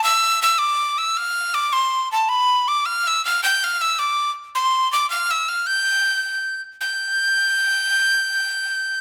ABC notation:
X:1
M:6/8
L:1/8
Q:3/8=107
K:Gmix
V:1 name="Tin whistle"
e'2 e' d'2 e' | f'2 d' c'2 a | b2 d' f' e' f' | g' f' e' d'2 z |
c'2 d' f' e' f' | g'4- g' z | g'6- | g'6 |]